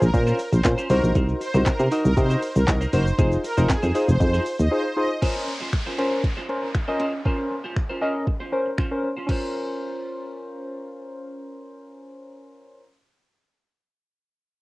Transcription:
0.02 A#1 A#4, muted clean electric guitar stroke, shaker
0.13 A#2 C#4 F4 A#4 C5, muted clean electric guitar stroke, kick, closed hi-hat, shaker
0.27 C#4 F4 C5, shaker
0.39 muted clean electric guitar stroke, open hi-hat, shaker
0.52 A#1 C5, muted clean electric guitar stroke, shaker
0.64 A#2 C#4 F4 A#4 C5, muted clean electric guitar stroke, kick, snare, clap, closed hi-hat, shaker
0.78 C#4 F4 C5, shaker
0.90 C2 D#4 F#4 A#4 C5, open hi-hat, shaker
1.03 A#1, muted clean electric guitar stroke, shaker
1.15 C2 D#4 A#4 C5, kick, closed hi-hat, shaker
1.29 muted clean electric guitar stroke, shaker
1.40 C5, muted clean electric guitar stroke, open hi-hat, shaker
1.54 C2 D#4 F#4 A#4 C5, shaker
1.66 C3 A#4, muted clean electric guitar stroke, kick, snare, clap, closed hi-hat, shaker
1.79 C3 D#4 A#4 C5, shaker
1.91 D#4 F#4 A#4 C5 D#5, open hi-hat, shaker
2.05 C2 A#4, muted clean electric guitar stroke, shaker
2.17 C3 D#4 F#4 A#4 C5 D#5, muted clean electric guitar stroke, kick, closed hi-hat, shaker
2.30 D#4 A#4 C5, shaker
2.42 muted clean electric guitar stroke, open hi-hat, shaker
2.55 C2 A#4, muted clean electric guitar stroke, shaker
2.67 C2 D#4 F#4 A#4 D#5, muted clean electric guitar stroke, kick, snare, clap, closed hi-hat, shaker
2.81 D#4 A#4 C5, shaker
2.93 F#1 D#4 F#4 A#4 C5, open hi-hat, shaker
3.06 muted clean electric guitar stroke, shaker
3.18 F1 D#4 F4 G#4 C5, kick, closed hi-hat, shaker
3.32 muted clean electric guitar stroke, shaker
3.44 A#4, muted clean electric guitar stroke, open hi-hat, shaker
3.57 F1 D#4 F4 G#4 C5, shaker
3.69 F2 G#4, muted clean electric guitar stroke, kick, snare, clap, closed hi-hat, shaker
3.83 F2 D#4 G#4 C5, shaker
3.94 D#4 F4 G#4 C5, open hi-hat, shaker
4.08 F1 C5, muted clean electric guitar stroke, shaker
4.20 F2 D#4 F4 G#4 C5, muted clean electric guitar stroke, kick, closed hi-hat, shaker
4.33 D#4 G#4 C5, shaker
4.46 muted clean electric guitar stroke, open hi-hat, shaker
4.59 D#2 D#5, muted clean electric guitar stroke, shaker
4.71 D#4 F4 G#4 C5
4.97 D#4 F4 G#4 C5 D#5
5.22 C#4 F4 A#4 C5, kick, closed hi-hat, crash, downlifter
5.35 muted clean electric guitar stroke
5.47 muted clean electric guitar stroke, closed hi-hat
5.61 C#4 F4 C5
5.73 finger snap, muted clean electric guitar stroke, kick, closed hi-hat
5.86 C#4 F4 A#4 C5
5.98 C#4 F4 A#4 C5, closed hi-hat
6.12 muted clean electric guitar stroke
6.24 muted clean electric guitar stroke, kick, closed hi-hat
6.37 C#4 F4 C5
6.49 C#4 A#4 C5, muted clean electric guitar stroke, closed hi-hat
6.63 muted clean electric guitar stroke
6.75 finger snap, muted clean electric guitar stroke, kick, closed hi-hat
6.88 C#4 F4 A#4 C5 D#5
7.00 C#4 F4 C5, closed hi-hat
7.13 muted clean electric guitar stroke
7.25 C#4 F4 A#4 C5, kick
7.39 muted clean electric guitar stroke
7.51 muted clean electric guitar stroke
7.64 C#4 F4 C5
7.76 finger snap, muted clean electric guitar stroke, kick
7.90 C#4 F4 A#4 C5
8.02 C#4 F4 A#4 C5 D#5
8.15 muted clean electric guitar stroke
8.27 muted clean electric guitar stroke, kick
8.40 C#4 F4 C5
8.52 C#4 A#4 C5, muted clean electric guitar stroke
8.66 muted clean electric guitar stroke
8.78 C#4 F4 C5, finger snap, kick
8.91 C#4 A#4 C5, muted clean electric guitar stroke
9.03 muted clean electric guitar stroke
9.17 C#4 F4 C5
9.27 C#4 F4 A#4, kick, crash
9.31 C5

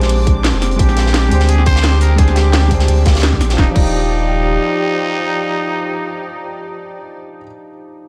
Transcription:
Already playing: A#1 G#3 C4 D4 G4 C5 D6
0.01 snare, closed hi-hat
0.09 closed hi-hat, open hi-hat
0.27 kick, closed hi-hat
0.44 snare, closed hi-hat
0.54 F1, snare
0.62 G4, snare, closed hi-hat, open hi-hat
0.71 closed hi-hat
0.76 A#1 G#3 D4 G4, kick, closed hi-hat
0.80 G4 C5
0.89 snare, closed hi-hat
0.97 snare, closed hi-hat
1.06 snare
1.14 snare, closed hi-hat
1.28 D2 G#3 D4, closed hi-hat
1.33 G4 C5
1.40 snare, closed hi-hat
1.49 G#4, closed hi-hat
1.58 snare
1.66 C5, kick, closed hi-hat
1.76 snare
1.83 snare, closed hi-hat
2.01 A#4, closed hi-hat, open hi-hat
2.16 G#3 D4 G#4, kick, closed hi-hat
2.20 G4 C5
2.27 snare, closed hi-hat
2.36 G4, snare, closed hi-hat
2.53 snare, closed hi-hat
2.68 G#3 D4, kick, closed hi-hat
2.72 G4 C5
2.80 snare, closed hi-hat
2.88 D2, closed hi-hat, open hi-hat
3.06 D2, kick, snare, closed hi-hat
3.15 snare, closed hi-hat
3.19 snare, closed hi-hat
3.23 snare, closed hi-hat
3.33 kick, snare
3.41 A#1, snare, closed hi-hat, open hi-hat
3.50 F3, snare, closed hi-hat
3.57 D#1 F3 D4 D#4 G4 D5, kick, snare
3.63 G4
3.71 F3 D5
3.76 D#1 D#4, kick, crash
3.81 G4

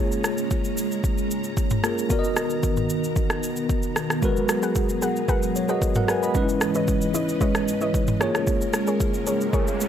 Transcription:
Already playing: G#3 A#3 C#4 F4 G#4 C#5 A#5
0.12 shaker
0.24 cross-stick, shaker
0.38 shaker
0.51 kick, shaker
0.64 shaker
0.77 shaker
0.92 shaker
1.04 kick, shaker
1.18 shaker
1.31 shaker
1.44 shaker
1.57 kick, shaker
1.70 mid tom, shaker
1.83 A#3 F4 G#4 A#4, cross-stick, shaker
1.98 shaker
2.09 D#3 B3 F#4 A#4 D5, kick, shaker
2.19 D#5
2.24 shaker
2.37 cross-stick, shaker
2.50 shaker
2.63 kick, shaker
2.77 mid tom, shaker
2.90 shaker
3.04 shaker
3.16 kick, shaker
3.30 cross-stick, shaker
3.43 shaker
3.56 shaker
3.69 kick, shaker
3.83 shaker
3.96 cross-stick, shaker
4.10 cross-stick, shaker
4.22 F#3 G#3 F#4 G#4 A#4 B4, kick, shaker
4.37 shaker
4.49 cross-stick, shaker
4.62 G#4 A#4 B4 F#5, shaker
4.76 kick, shaker
4.89 shaker
5.02 G#4 A#4 B4 F#5, shaker
5.16 shaker
5.28 G#4 A#4 B4 F#5, kick, shaker
5.43 shaker
5.56 C#5, shaker
5.69 F#4 G#4 A#4 B4 D#5 F#5, shaker
5.82 kick, shaker
5.95 A#4 F#5, mid tom, shaker
6.08 G#4 A#4 B4 F#5 G#5, cross-stick, shaker
6.23 D#5 B5, shaker
6.34 G#2 E3 G#3 C#4 D#4 B4 D#5, kick, shaker
6.42 E4
6.49 shaker
6.61 cross-stick, shaker
6.75 G#3 E4 B4 C#5 D#5, shaker
6.88 kick, shaker
7.01 shaker
7.14 G#3 E4 B4 C#5 D#5, shaker
7.29 shaker
7.41 G#3 E4 B4 C#5 D#5, kick, shaker
7.55 cross-stick, shaker
7.68 shaker
7.81 G#3 E4 B4 C#5 D#5, shaker
7.94 kick, shaker
8.07 mid tom, shaker
8.20 G#3 A#3 C#4 F4 G#4 A#4 C#5, cross-stick, shaker
8.35 cross-stick, shaker
8.47 kick, riser, shaker
8.61 shaker
8.74 cross-stick, shaker
8.87 G#4 A#4 C#5, shaker
9.00 kick, shaker
9.14 shaker
9.27 G#4 A#4 C#5, shaker
9.41 shaker
9.53 G#4 A#4 C#5, kick, shaker
9.67 shaker
9.81 shaker

